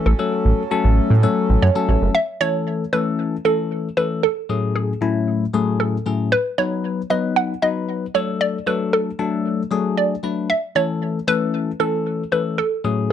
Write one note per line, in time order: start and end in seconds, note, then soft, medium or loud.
0.00 2.11 C#4 medium
0.00 2.11 A4 medium
0.06 0.14 A1 loud
0.06 2.13 F#3 medium
0.06 1.85 A4 medium
0.19 0.62 F#3 medium
0.19 0.62 A3 medium
0.19 0.62 C#4 medium
0.19 0.62 A4 medium
0.45 0.53 A1 medium
0.71 1.14 F#3 medium
0.71 1.14 A3 medium
0.71 1.14 C#4 medium
0.71 1.14 A4 loud
0.84 1.00 A1 medium
1.10 1.26 A2 loud
1.23 1.66 F#3 medium
1.23 1.66 A3 medium
1.23 1.66 C#4 medium
1.23 1.66 A4 loud
1.50 1.57 A1 medium
1.62 1.70 F#2 medium
1.62 2.11 C#5 medium
1.75 2.15 F#3 medium
1.75 2.15 A3 medium
1.75 2.15 C#4 medium
1.75 2.15 A4 loud
1.89 1.97 A1 loud
2.02 2.10 F#1 medium
2.15 2.42 E5 loud
2.41 2.83 E3 medium
2.41 2.83 A3 medium
2.41 2.83 C#4 medium
2.41 2.83 A4 medium
2.41 2.95 C#5 loud
2.93 3.35 E3 medium
2.93 3.35 A3 medium
2.93 3.36 C#4 medium
2.93 3.36 A4 medium
2.93 3.41 B4 loud
3.45 3.88 E3 medium
3.45 3.88 A3 medium
3.45 3.88 C#4 medium
3.45 3.99 A4 medium
3.45 3.88 A4 medium
3.97 4.23 E3 medium
3.97 4.23 A3 medium
3.97 4.23 C#4 medium
3.97 4.24 A4 medium
3.97 4.24 B4 medium
4.23 4.77 A4 loud
4.49 4.92 A2 medium
4.49 4.92 F#3 medium
4.49 4.92 A3 medium
4.49 4.92 C#4 medium
4.49 4.92 G#4 medium
4.76 5.83 G#4 medium
5.01 5.44 A2 medium
5.01 5.44 F#3 medium
5.01 5.44 A3 medium
5.01 5.44 C#4 medium
5.01 5.44 E4 medium
5.53 5.96 A2 medium
5.53 5.96 F#3 medium
5.53 5.96 A3 medium
5.53 5.96 C#4 medium
5.53 5.97 G#4 loud
5.80 6.34 A4 medium
6.06 6.32 A2 medium
6.06 6.32 F#3 medium
6.06 6.32 A3 medium
6.06 6.32 C#4 medium
6.06 6.32 G#4 medium
6.32 6.59 B4 loud
6.58 7.01 F#3 medium
6.58 7.01 B3 medium
6.58 7.01 D#4 medium
6.58 7.01 B4 medium
6.58 7.12 C#5 loud
7.10 7.53 F#3 medium
7.10 7.53 B3 medium
7.10 7.53 D#4 medium
7.10 7.53 B4 medium
7.10 7.37 D#5 loud
7.36 7.61 F#5 loud
7.62 8.05 F#3 medium
7.62 8.05 B3 medium
7.62 8.05 D#4 medium
7.62 8.05 B4 medium
7.62 8.16 D#5 loud
8.15 8.57 F#3 medium
8.15 8.57 A3 medium
8.15 8.57 D4 medium
8.15 8.57 A4 medium
8.15 8.42 C#5 loud
8.41 8.68 D5 loud
8.67 9.09 F#3 medium
8.67 9.09 A3 medium
8.67 9.10 D4 medium
8.67 9.10 A4 medium
8.67 8.94 B4 medium
8.93 10.01 A4 medium
9.19 9.62 F#3 medium
9.19 9.62 A3 medium
9.19 9.62 D4 medium
9.19 9.62 A4 medium
9.71 10.14 F#3 medium
9.71 10.14 A3 medium
9.71 10.14 D4 medium
9.71 10.14 G#4 loud
9.97 10.46 D5 loud
10.23 10.49 F#3 medium
10.23 10.49 A3 medium
10.23 10.50 D4 medium
10.23 10.50 B4 medium
10.50 10.61 E5 loud
10.75 11.18 E3 medium
10.75 11.18 A3 medium
10.75 11.18 C#4 medium
10.75 11.18 A4 medium
10.75 11.29 C#5 loud
11.28 11.70 E3 medium
11.28 11.70 A3 medium
11.28 11.70 C#4 medium
11.28 11.70 A4 medium
11.28 11.82 B4 loud
11.80 12.22 E3 medium
11.80 12.22 A3 medium
11.80 12.23 C#4 medium
11.80 12.28 A4 medium
11.80 12.23 A4 medium
12.32 12.58 E3 medium
12.32 12.58 A3 medium
12.32 12.58 C#4 medium
12.32 12.58 A4 medium
12.32 12.59 B4 medium
12.58 13.12 A4 loud
12.84 13.12 A2 medium
12.84 13.12 F#3 medium
12.84 13.12 A3 medium
12.84 13.12 C#4 medium
12.84 13.12 G#4 medium